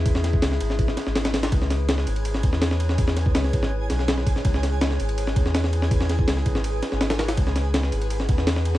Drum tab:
RD |x-x-x-x-x-x-xxxx|x-x-x-xxx-x-x-x-|x-x-x-x---x-x-x-|x-x-x-xxx-x-x-x-|
SD |-oo-oo-o-ooooooo|-oo-oo---o-ooo-o|-oo-oo-o--oooo-o|-oo-oo---o-ooo-o|
BD |o--o----o-------|o---------o-----|o--o--o-------o-|o---------o-----|

RD |x-x-x-x-x-x-xxxx|x-x-x-xxx-x-x-x-|
SD |-oo-oo-o--oooooo|-oo-oo---o-ooo-o|
BD |o--o--o---------|o---------o-----|